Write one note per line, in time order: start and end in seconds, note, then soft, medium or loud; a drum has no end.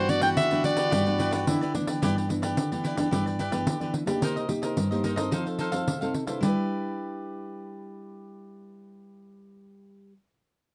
0.00 0.34 G2 medium
0.00 1.49 F#4 loud
0.00 0.11 C5 medium
0.08 0.18 E3 medium
0.08 0.18 B3 medium
0.08 0.19 D4 medium
0.08 0.22 D5 medium
0.08 muted cavaquinho stroke soft
0.08 pandeiro medium
0.21 0.46 E3 medium
0.21 0.46 B3 medium
0.21 0.46 D4 medium
0.21 0.50 G4 medium
0.21 0.49 B4 medium
0.21 0.49 D5 medium
0.21 0.29 G5 medium
0.21 pandeiro medium
0.37 0.89 D3 medium
0.37 0.62 E5 medium
0.37 pandeiro medium
0.51 0.60 E3 medium
0.51 0.60 B3 medium
0.51 0.61 D4 medium
0.51 0.64 G4 soft
0.51 0.64 B4 soft
0.51 0.63 D5 soft
0.51 pandeiro soft
0.64 1.01 E3 medium
0.64 1.01 B3 medium
0.64 1.02 D4 medium
0.64 0.77 E4 soft
0.64 0.77 G4 soft
0.64 0.76 B4 soft
0.64 1.43 D5 medium
0.64 0.75 D5 medium
0.64 pandeiro medium
0.76 0.90 G4 medium
0.76 0.90 B4 medium
0.76 0.90 D5 medium
0.76 pandeiro medium
0.90 1.44 G2 medium
0.90 1.04 E4 medium
0.90 1.04 G4 medium
0.90 1.04 B4 medium
0.90 1.04 D5 medium
0.90 pandeiro medium
1.05 1.43 E3 medium
1.05 1.43 B3 medium
1.05 1.43 D4 medium
1.05 1.18 G4 soft
1.05 1.19 B4 soft
1.05 1.18 D5 soft
1.05 pandeiro soft
1.18 1.31 E4 medium
1.18 1.32 G4 medium
1.18 1.31 B4 medium
1.18 1.30 D5 medium
1.18 pandeiro medium
1.31 1.60 G4 medium
1.31 1.59 B4 medium
1.31 1.58 D5 medium
1.31 pandeiro medium
1.47 1.99 D3 medium
1.47 1.63 E3 medium
1.47 1.64 B3 medium
1.47 1.64 D4 medium
1.47 1.74 E4 medium
1.47 pandeiro medium
1.61 1.74 G4 soft
1.61 1.74 B4 soft
1.61 1.73 D5 medium
1.61 pandeiro soft
1.74 1.98 E3 medium
1.74 1.98 B3 medium
1.74 1.87 D4 medium
1.74 1.98 D4 medium
1.74 muted cavaquinho stroke soft
1.74 pandeiro medium
1.87 2.01 G4 soft
1.87 2.01 B4 soft
1.87 2.00 D5 soft
1.87 pandeiro medium
2.02 2.54 G2 medium
2.02 2.25 E3 soft
2.02 2.25 B3 soft
2.02 2.26 D4 medium
2.02 2.14 E4 medium
2.02 2.15 G4 medium
2.02 2.15 B4 medium
2.02 2.15 D5 medium
2.02 pandeiro medium
2.16 2.28 G4 soft
2.16 2.29 B4 soft
2.16 2.28 D5 soft
2.16 pandeiro soft
2.29 2.55 E3 medium
2.29 2.55 B3 medium
2.29 2.56 D4 medium
2.29 muted cavaquinho stroke soft
2.29 pandeiro medium
2.42 2.70 G4 soft
2.42 2.69 B4 soft
2.42 2.69 D5 medium
2.42 pandeiro medium
2.57 3.09 D3 medium
2.57 pandeiro medium
2.71 2.94 E3 medium
2.71 2.94 B3 medium
2.71 2.95 D4 medium
2.71 2.84 G4 soft
2.71 2.84 B4 soft
2.71 2.84 D5 soft
2.71 pandeiro soft
2.84 2.96 E4 soft
2.84 2.97 G4 soft
2.84 2.97 B4 soft
2.84 2.96 D5 medium
2.84 pandeiro medium
2.97 3.07 E3 medium
2.97 3.07 B3 medium
2.97 3.07 D4 medium
2.97 3.11 G4 soft
2.97 3.11 B4 soft
2.97 3.10 D5 medium
2.97 pandeiro medium
3.11 3.64 G2 medium
3.11 3.37 E3 soft
3.11 3.37 B3 soft
3.11 3.37 D4 medium
3.11 3.24 E4 medium
3.11 3.25 G4 medium
3.11 3.25 B4 medium
3.11 3.25 D5 medium
3.11 pandeiro medium
3.26 3.38 G4 soft
3.26 3.39 B4 soft
3.26 3.38 D5 soft
3.26 pandeiro soft
3.39 3.52 E4 medium
3.39 3.52 G4 medium
3.39 3.52 B4 medium
3.39 3.50 D5 medium
3.39 pandeiro soft
3.51 3.75 E3 medium
3.51 3.76 B3 medium
3.51 3.76 D4 medium
3.51 3.80 G4 medium
3.51 3.79 B4 medium
3.51 3.79 D5 medium
3.51 pandeiro medium
3.66 4.19 D3 medium
3.66 pandeiro medium
3.80 4.03 E3 medium
3.80 4.03 B3 medium
3.80 4.03 D4 medium
3.80 3.94 G4 soft
3.80 3.94 B4 soft
3.80 3.93 D5 soft
3.80 pandeiro soft
3.94 muted cavaquinho stroke soft
3.94 pandeiro medium
4.06 4.44 A#3 medium
4.06 4.44 D#4 medium
4.06 4.44 G4 medium
4.06 4.21 G4 soft
4.06 4.21 B4 soft
4.06 4.20 D5 soft
4.06 pandeiro medium
4.20 4.73 C3 medium
4.20 4.35 D#4 medium
4.20 4.35 A#4 medium
4.20 4.35 C5 medium
4.20 pandeiro medium
4.25 4.35 D#5 medium
4.36 4.49 A#4 soft
4.36 4.49 C5 soft
4.36 4.48 D#5 soft
4.36 pandeiro soft
4.48 4.75 A#3 medium
4.48 4.75 D#4 medium
4.48 4.75 G4 medium
4.48 muted cavaquinho stroke soft
4.48 pandeiro medium
4.62 4.90 A#4 soft
4.62 4.89 C5 medium
4.62 4.89 D#5 medium
4.62 pandeiro medium
4.76 5.29 G2 medium
4.76 pandeiro medium
4.91 5.14 A#3 medium
4.91 5.14 D#4 medium
4.91 5.14 G4 medium
4.91 5.03 A#4 soft
4.91 5.04 C5 soft
4.91 5.03 D#5 soft
4.91 pandeiro soft
5.03 5.17 D#4 soft
5.03 5.17 A#4 soft
5.03 5.16 C5 soft
5.03 5.15 D#5 medium
5.03 pandeiro soft
5.16 5.68 C4 medium
5.16 5.68 D#4 medium
5.16 5.69 A4 medium
5.16 5.31 A#4 soft
5.16 5.30 C5 soft
5.16 5.30 D#5 medium
5.16 pandeiro medium
5.31 5.84 F3 medium
5.31 5.44 D#4 medium
5.31 5.45 A4 medium
5.31 5.45 C5 medium
5.31 5.45 F5 medium
5.31 pandeiro medium
5.46 5.58 A4 soft
5.46 5.59 C5 soft
5.46 5.58 F5 soft
5.46 pandeiro soft
5.58 5.72 D#4 medium
5.58 5.72 A4 medium
5.58 5.72 C5 medium
5.58 5.71 F5 medium
5.58 pandeiro soft
5.72 5.96 C4 medium
5.72 5.96 D#4 medium
5.72 6.00 A4 soft
5.72 5.96 A4 medium
5.72 6.00 C5 medium
5.72 5.99 F5 medium
5.72 pandeiro medium
5.87 6.40 C3 medium
5.87 pandeiro medium
6.01 6.24 C4 soft
6.01 6.25 D#4 medium
6.01 6.25 A4 medium
6.01 6.13 A4 soft
6.01 6.13 C5 soft
6.01 6.14 F5 soft
6.01 pandeiro soft
6.14 muted cavaquinho stroke soft
6.14 pandeiro soft
6.27 6.42 D4 soft
6.27 6.44 E4 medium
6.27 6.41 A4 soft
6.27 6.46 B4 medium
6.27 6.41 C5 soft
6.27 6.40 F5 soft
6.27 pandeiro medium
6.41 10.12 G3 soft
6.41 10.13 D4 soft
6.41 10.12 E4 medium
6.41 10.13 G4 medium
6.41 10.14 B4 medium
6.41 10.14 D5 medium
6.41 pandeiro medium
6.45 10.14 E4 soft
6.45 10.15 B4 medium